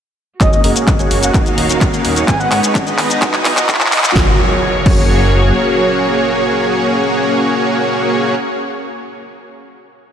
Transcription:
0.41 analog synth bass F#1, string section G#3 A#3 F#4, supersaw synth A#3 C#4 F#4 G#4 C#5, soft synth lead D#5, kick, clap, closed hi-hat, riser, shaker
0.52 soft synth lead D#5, shaker
0.64 analog synth bass F#1, supersaw synth A#3 C#4 F#4 G#4 A#4, soft synth lead D#5, open hi-hat
0.76 closed hi-hat, shaker
0.88 analog synth bass F#1, kick, clap, closed hi-hat, shaker
0.99 supersaw synth A#3 C#4 F#4 G#4 C#5, closed hi-hat, shaker
1.11 analog synth bass F#1, open hi-hat
1.23 soft synth lead F#5, closed hi-hat, shaker
1.34 analog synth bass D#1, string section D#3 C#4 F5, kick, clap, closed hi-hat, shaker
1.46 closed hi-hat, shaker
1.58 analog synth bass D#1, open hi-hat
1.70 supersaw synth A#3 C#4 D#4 F#4 A#4, closed hi-hat, shaker
1.81 analog synth bass D#1, kick, clap, closed hi-hat, shaker
1.93 supersaw synth A#3 C#4 D#4 F#4 A#4, shaker
2.05 analog synth bass D#1, open hi-hat
2.16 supersaw synth A#3 C#4 D#4 F#4 C#5, closed hi-hat, shaker
2.28 analog synth bass G#1, supersaw synth G#3 B3 D#4 D#5, string section G#3 B3 D#4, soft synth lead G#5, kick, clap, closed hi-hat, shaker
2.40 soft synth lead F#5, shaker
2.52 analog synth bass G#1, supersaw synth G#3 B3 D#4 B4 C#5, soft synth lead F#5, clap, open hi-hat
2.63 closed hi-hat, shaker
2.75 analog synth bass G#1, kick, clap, closed hi-hat, shaker
2.87 supersaw synth G#3 B3 D#4 B4 D#5, closed hi-hat, shaker
2.98 analog synth bass G#1, clap, open hi-hat
3.10 closed hi-hat, shaker
3.22 analog synth bass B1, string section F#3 B3, supersaw synth B3 D#4 F#4 G#5, kick, clap, closed hi-hat, shaker
3.34 clap, closed hi-hat, shaker
3.45 analog synth bass B1, clap, open hi-hat
3.57 supersaw synth B3 D#4 F#4 D#5 F#5, clap, closed hi-hat, shaker
3.69 analog synth bass B1, kick, clap, closed hi-hat, shaker
3.75 clap
3.81 supersaw synth B3 D#4 F#4 D#5 F#5, clap, shaker
3.86 clap
3.92 analog synth bass B1, clap, open hi-hat
3.98 clap
4.04 supersaw synth B3 D#4 F#4 D#5 F#5, clap, closed hi-hat, shaker
4.10 clap
4.16 analog synth bass F#1, string section F#3 F#4 G#4 A#4 C#5, supersaw synth A#3 C#4 F#4 G#4, kick, snare, impact
4.86 analog synth bass F#1, supersaw synth A#3 C#4 F#4 G#4 C#5, kick, crash

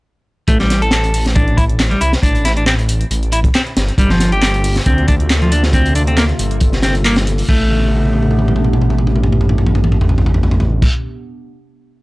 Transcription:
0.48 detuned saw bass A1, clean electric guitar A3, kick, closed hi-hat
0.60 clean electric guitar G3, snare, closed hi-hat
0.70 snare, closed hi-hat
0.82 clean electric guitar A4, closed hi-hat
0.91 snare, clap, closed hi-hat
1.04 closed hi-hat
1.14 closed hi-hat, open hi-hat
1.26 snare, closed hi-hat
1.35 clean electric guitar D4, kick, closed hi-hat
1.48 closed hi-hat
1.57 clean electric guitar E4, kick, closed hi-hat
1.69 closed hi-hat
1.79 snare, clap, closed hi-hat
1.91 clean electric guitar G3, closed hi-hat
2.01 detuned saw bass C2, clean electric guitar E4, closed hi-hat
2.13 snare, closed hi-hat
2.23 detuned saw bass A1, clean electric guitar D4, kick, closed hi-hat
2.35 closed hi-hat
2.45 clean electric guitar E4, snare, closed hi-hat
2.57 clean electric guitar D4, closed hi-hat
2.66 clean electric guitar C4, snare, clap, closed hi-hat
2.79 closed hi-hat
2.89 closed hi-hat
3.01 closed hi-hat
3.11 detuned saw bass A1, closed hi-hat
3.23 closed hi-hat
3.32 clean electric guitar E4, closed hi-hat
3.44 kick, closed hi-hat
3.54 clean electric guitar C4, snare, clap, closed hi-hat
3.67 closed hi-hat
3.77 detuned saw bass G1, snare, closed hi-hat
3.88 closed hi-hat
3.98 detuned saw bass G1, ambient pad C3 A#3 F4 A4, clean electric guitar G3, kick, closed hi-hat
4.10 clean electric guitar F3, snare, closed hi-hat
4.20 snare, closed hi-hat
4.32 clean electric guitar G4, closed hi-hat
4.42 snare, clap, closed hi-hat
4.54 closed hi-hat
4.64 closed hi-hat, open hi-hat
4.76 snare, closed hi-hat
4.86 detuned saw bass D2, clean electric guitar C4, kick, closed hi-hat
4.98 closed hi-hat
5.08 clean electric guitar D4, kick, closed hi-hat
5.20 closed hi-hat
5.30 snare, clap, closed hi-hat
5.42 clean electric guitar F3, closed hi-hat
5.52 clean electric guitar D4, closed hi-hat
5.63 snare, closed hi-hat
5.73 clean electric guitar C4, kick, closed hi-hat
5.86 closed hi-hat
5.95 clean electric guitar D4, closed hi-hat
6.07 clean electric guitar C4, closed hi-hat
6.17 clean electric guitar A#3, snare, clap, closed hi-hat
6.29 closed hi-hat
6.39 detuned saw bass G1, closed hi-hat
6.51 closed hi-hat
6.61 kick, closed hi-hat
6.73 snare, closed hi-hat
6.83 clean electric guitar C4, snare, closed hi-hat
6.95 closed hi-hat
7.05 clean electric guitar A#3, clap, closed hi-hat, open hi-hat
7.16 snare, closed hi-hat
7.27 closed hi-hat
7.38 closed hi-hat, open hi-hat
7.48 detuned saw bass A1, ambient pad C3 B3 D4 G4, clean electric guitar A3, kick, crash
7.71 high tom
7.80 high tom
7.88 high tom
7.97 high tom
8.05 high tom
8.13 high tom
8.22 high tom
8.31 high tom
8.39 high tom
8.48 mid tom
8.56 mid tom
8.64 mid tom
8.73 mid tom
8.81 mid tom
8.90 mid tom
8.98 mid tom
9.07 mid tom
9.16 mid tom
9.23 mid tom
9.32 mid tom
9.41 mid tom
9.49 mid tom
9.58 mid tom
9.67 mid tom
9.75 mid tom
9.84 mid tom
9.92 mid tom
10.01 floor tom
10.09 floor tom
10.18 floor tom
10.26 floor tom
10.34 floor tom
10.43 floor tom
10.51 floor tom
10.60 floor tom
10.82 kick, crash

